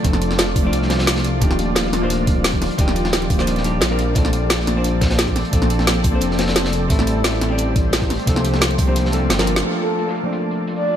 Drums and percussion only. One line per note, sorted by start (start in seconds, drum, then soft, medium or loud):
0.04 kick loud
0.04 closed hi-hat medium
0.13 snare soft
0.22 closed hi-hat medium
0.30 snare soft
0.38 snare loud
0.38 closed hi-hat medium
0.56 kick loud
0.56 closed hi-hat medium
0.56 open hi-hat medium
0.73 closed hi-hat medium
0.82 snare soft
0.90 snare loud
0.90 closed hi-hat medium
0.99 snare loud
0.99 closed hi-hat medium
1.06 snare loud
1.06 closed hi-hat loud
1.06 closed hi-hat medium
1.16 snare medium
1.16 closed hi-hat medium
1.24 closed hi-hat medium
1.41 kick loud
1.41 closed hi-hat medium
1.51 snare soft
1.59 closed hi-hat medium
1.76 snare loud
1.76 closed hi-hat medium
1.84 snare soft
1.93 snare soft
1.93 closed hi-hat medium
2.10 closed hi-hat medium
2.27 kick loud
2.27 closed hi-hat medium
2.44 snare loud
2.44 closed hi-hat medium
2.53 kick medium
2.53 closed hi-hat soft
2.62 snare soft
2.62 closed hi-hat medium
2.62 open hi-hat medium
2.71 closed hi-hat soft
2.78 kick loud
2.78 closed hi-hat medium
2.88 snare soft
2.96 closed hi-hat medium
3.05 snare soft
3.13 snare loud
3.13 closed hi-hat medium
3.22 closed hi-hat soft
3.30 kick loud
3.30 closed hi-hat medium
3.30 open hi-hat medium
3.39 snare soft
3.47 closed hi-hat medium
3.56 snare soft
3.56 closed hi-hat soft
3.64 closed hi-hat medium
3.81 snare loud
3.81 closed hi-hat medium
3.99 closed hi-hat medium
4.15 kick loud
4.15 closed hi-hat medium
4.25 snare soft
4.33 closed hi-hat medium
4.50 snare loud
4.50 closed hi-hat medium
4.60 snare soft
4.67 snare soft
4.67 closed hi-hat medium
4.84 closed hi-hat medium
5.01 kick loud
5.01 snare loud
5.01 closed hi-hat medium
5.11 snare loud
5.11 closed hi-hat medium
5.18 snare loud
5.18 closed hi-hat medium
5.27 kick medium
5.27 closed hi-hat soft
5.36 snare soft
5.36 closed hi-hat medium
5.36 open hi-hat medium
5.45 closed hi-hat soft
5.53 kick loud
5.53 closed hi-hat medium
5.62 snare soft
5.70 closed hi-hat medium
5.79 snare soft
5.87 snare loud
5.87 closed hi-hat medium
6.04 kick medium
6.04 closed hi-hat medium
6.04 open hi-hat medium
6.21 closed hi-hat medium
6.31 snare soft
6.39 snare loud
6.39 closed hi-hat medium
6.48 snare loud
6.48 closed hi-hat medium
6.56 snare loud
6.56 closed hi-hat medium
6.65 snare loud
6.65 closed hi-hat medium
6.73 closed hi-hat medium
6.90 kick loud
6.90 closed hi-hat medium
6.99 snare soft
7.07 closed hi-hat medium
7.24 snare loud
7.24 closed hi-hat medium
7.33 snare soft
7.41 snare soft
7.41 closed hi-hat medium
7.58 closed hi-hat medium
7.58 closed hi-hat loud
7.76 kick medium
7.76 closed hi-hat medium
7.93 snare loud
7.93 closed hi-hat medium
7.93 closed hi-hat loud
8.02 kick medium
8.02 closed hi-hat soft
8.10 snare soft
8.10 closed hi-hat medium
8.10 open hi-hat medium
8.19 closed hi-hat soft
8.27 kick loud
8.27 closed hi-hat medium
8.27 closed hi-hat loud
8.36 snare soft
8.45 closed hi-hat medium
8.54 snare soft
8.61 snare loud
8.61 closed hi-hat medium
8.71 closed hi-hat soft
8.78 kick loud
8.78 closed hi-hat medium
8.78 open hi-hat medium
8.96 closed hi-hat medium
9.05 snare soft
9.12 closed hi-hat medium
9.30 snare loud
9.30 snare medium
9.30 closed hi-hat medium
9.30 closed hi-hat loud
9.39 snare medium
9.39 snare soft
9.39 closed hi-hat soft
9.47 closed hi-hat medium
9.56 snare medium
9.64 closed hi-hat medium
9.81 closed hi-hat medium
9.99 closed hi-hat medium
10.08 snare soft
10.16 closed hi-hat medium
10.33 closed hi-hat medium
10.51 closed hi-hat medium
10.67 closed hi-hat medium
10.76 closed hi-hat soft
10.85 open hi-hat medium
10.93 closed hi-hat soft